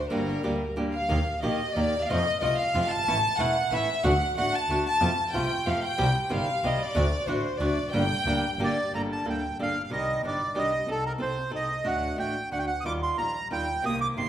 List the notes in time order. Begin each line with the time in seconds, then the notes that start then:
Already playing: C5
0.10 G1 D3 G3 A#3 D4 G4 A#4
0.43 D2 D3 G3 A#3 D4 G4
0.76 D3 G3 A#3 D4 G4
0.93 F5
1.09 D#2 D#3 A#3 D#4 G4
1.42 A#1 D#3 A#3 D#4 G4 D#5
1.76 D#2 D#3 A#3 D#4 G4 D5
1.94 D#2
2.02 F5
2.10 F2 C3 F3 A3 C4 F4 D#5
2.41 C2 C3 F3 A3 C4 F4 D#5
2.58 F5
2.74 F2 C3 F3 A3 C4 F4
2.91 G1 A5
3.07 A1 E3 A3 C#4 E4
3.39 E1 E3 A3 C#4 E4 F#5
3.71 A1 E3 A3 C#4 E4 E5
4.03 D2 D3 A3 D4 F#4 F#5
4.36 A1 D3 A3 D4 F#4 F#5
4.54 A5
4.68 D2 D3 A3 D4 F#4
4.86 A5
5.01 F2 C3 F3 A3 C4 F4
5.33 C2 C3 F3 A3 C4 F4 G5
5.66 F2 C3 F3 A3 C4 F4 F5
5.84 G5
5.98 C2 C3 D#3 G3 C4 G4
6.24 G5
6.29 G1 C3 D#3 G3 C4 G4 F5
6.63 C2 C3 D#3 G3 C4 G4 D#5
6.81 D5
6.95 D2 D3 A3 D4 F#4
7.27 A1 D3 A3 D4 F#4 C5
7.60 D2 D3 A3 D4 F#4 D5
7.75 F1
7.92 G1 D3 G3 A#3 D4 G4 G5
8.25 D2 D3 G3 A#3 D4 G4
8.59 G1 D3 G3 A#3 D4 G4
8.64 D5
8.91 G1 D3 G3 A#3 D4 A4 A#5
9.12 A5
9.25 D2 D3 G3 A#3 D4 A4
9.30 G5
9.58 G1 D3 G3 A#3 D4 A4
9.62 F5
9.84 F5
9.90 C2 C3 D#3 G3 G4 D#5
10.22 G1 C3 D#3 G3 D4 G4
10.28 D5
10.55 C2 C3 D#3 G3 D4 G4 D#5
10.86 C2 C4 D#4 A4
10.91 A4
11.06 A#4
11.18 C2 C4 D#4 A4 C5
11.50 C2 C4 D#4 A4
11.55 D#5
11.84 D2 D3 A3 D4 F#4 F#5
12.16 A1 D3 A3 D4 F#4 G5
12.51 D2 D3 A3 D4 F#4 F#5
12.59 G5
12.67 F#5
12.81 D#3 D#6
12.85 D#2 G3 D#4 F4 D6
13.03 C6
13.17 A#1 D#3 G3 D#4 F4 A#5
13.50 D#2 D#3 G3 D#4 F4 G5
13.82 C2 C3 D#3 A#3 C4 G4 D#6
14.01 D6
14.15 G1 C3 D#3 A#3 C4 G4 C6